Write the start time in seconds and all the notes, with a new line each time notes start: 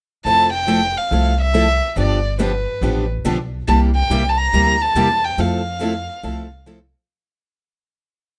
0.25 F1 F3 A3 C4 E4 A4 A5
0.53 G5
0.67 F3 A3 C4 E4 A4
0.97 F5
1.11 C2 F3 A3 C4 E4 A4
1.42 E5
1.54 F3 A3 C4 E4 A4
1.96 G1 D3 F3 B3 D4 G4 D5
2.39 D3 F3 B3 D4 G4 B4
2.81 A1 D3 F3 B3 D4 G4
3.24 B1 D3 F3 B3 D4 G4
3.68 C2 C3 G3 A#3 E4 G4 A5
3.96 G5
4.10 C2 C3 G3 A#3 E4 G4
4.29 A5
4.38 A#5
4.53 D2 C3 G3 A#3 E4 G4
4.81 A5
4.95 E2 C3 G3 A#3 E4 G4
5.24 G5
5.38 F2 F3 A3 C4 E4 A4 F5
5.80 F3 A3 C4 E4 A4
6.23 C2 F3 A3 C4 E4 A4
6.66 F3 A3 C4 E4 A4